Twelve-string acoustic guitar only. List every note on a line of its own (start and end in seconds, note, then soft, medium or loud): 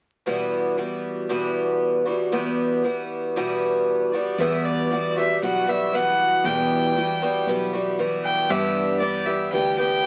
0.26 0.77 E2 medium
0.26 0.78 B2 medium
0.26 0.77 E3 medium
0.26 0.77 G3 medium
0.26 0.77 B3 medium
0.26 0.78 F#4 medium
0.77 1.30 E3 soft
0.77 1.29 G3 soft
0.77 1.30 B3 soft
0.77 1.30 F#4 medium
1.29 2.06 E2 medium
1.29 2.07 B2 medium
1.29 2.07 E3 medium
1.29 2.07 G3 medium
1.29 2.06 B3 medium
1.29 2.05 F#4 medium
2.05 2.31 E3 soft
2.05 2.31 G3 soft
2.05 2.31 B3 soft
2.05 2.32 F#4 soft
2.32 2.84 E2 medium
2.32 2.84 B2 medium
2.32 2.83 E3 medium
2.32 2.83 G3 medium
2.32 2.84 B3 medium
2.32 2.84 F#4 medium
2.84 3.35 E3 soft
2.84 3.36 G3 soft
2.84 3.36 B3 soft
2.84 3.36 F#4 medium
3.36 4.13 E2 medium
3.36 4.13 B2 medium
3.36 4.13 E3 medium
3.36 4.13 G3 medium
3.36 4.13 B3 medium
3.36 4.12 F#4 medium
4.13 4.39 E3 soft
4.13 4.39 G3 soft
4.13 4.39 B3 soft
4.13 4.39 F#4 soft
4.39 4.90 E2 medium
4.39 4.90 B2 medium
4.39 4.90 E3 medium
4.39 4.91 G3 medium
4.39 4.92 B3 medium
4.39 4.91 F#4 medium
4.91 5.16 E3 soft
4.91 5.16 G3 medium
4.91 5.16 B3 soft
4.91 5.15 F#4 medium
5.16 5.41 E3 soft
5.16 5.41 G3 soft
5.16 5.42 B3 soft
5.16 5.42 F#4 soft
5.42 5.67 E3 soft
5.42 5.68 G3 medium
5.42 5.67 B3 medium
5.42 5.66 F#4 medium
5.67 5.91 E3 soft
5.67 5.92 G3 soft
5.67 5.93 B3 soft
5.67 5.93 F#4 soft
5.93 6.45 E3 medium
5.93 6.46 G3 soft
5.93 6.46 B3 medium
5.93 6.45 F#4 medium
6.45 6.96 E2 medium
6.45 6.96 B2 medium
6.45 6.96 E3 medium
6.45 6.96 G3 medium
6.45 6.97 B3 medium
6.96 7.21 E3 soft
6.96 7.22 G3 medium
6.96 7.21 B3 medium
6.96 7.21 F#4 medium
7.22 7.46 E3 soft
7.22 7.47 G3 soft
7.22 7.47 B3 medium
7.22 7.47 F#4 medium
7.47 7.73 E3 medium
7.47 7.73 G3 medium
7.47 7.73 B3 medium
7.47 7.72 F#4 medium
7.73 7.97 E3 soft
7.73 7.98 G3 soft
7.73 7.98 B3 soft
7.73 7.99 F#4 medium
7.99 8.50 E3 medium
7.99 8.50 G3 medium
7.99 8.50 B3 medium
7.99 8.50 F#4 medium
8.49 9.01 G2 medium
8.49 9.01 D3 medium
8.49 8.99 E3 medium
8.49 9.00 G3 medium
8.49 9.01 B3 medium
8.49 9.01 G4 medium
9.00 9.26 E3 medium
9.00 9.27 G3 medium
9.00 9.26 B3 medium
9.00 9.25 G4 medium
9.26 9.51 E3 soft
9.26 9.53 G3 soft
9.26 9.53 B3 soft
9.26 9.52 G4 medium
9.52 9.78 E3 medium
9.52 9.78 G3 soft
9.52 9.77 B3 medium
9.52 9.76 G4 medium
9.77 10.01 E3 soft
9.77 10.03 G3 soft
9.77 10.03 B3 soft
9.77 10.04 G4 medium
10.03 10.06 E3 soft